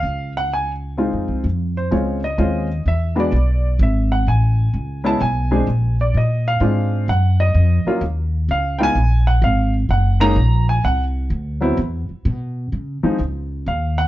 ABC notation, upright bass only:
X:1
M:3/4
L:1/8
Q:"Swing" 1/4=128
K:Db
V:1 name="Upright bass" clef=bass
D,,4- (3D,, F,, C,, | F,,2 D,,2 E,,2 | =E,,2 =B,,,2 ^G,,,2 | =A,,,2 ^C,,2 =B,,,2 |
B,,,2 B,,2 A,,2 | G,,2 F,, z E,,2 | D,,2 B,,,2 A,,,2 | G,,,2 B,,,2 C,,2 |
=D,,2 =E,, z =B,,2 | D, z D,,2 E,,2 |]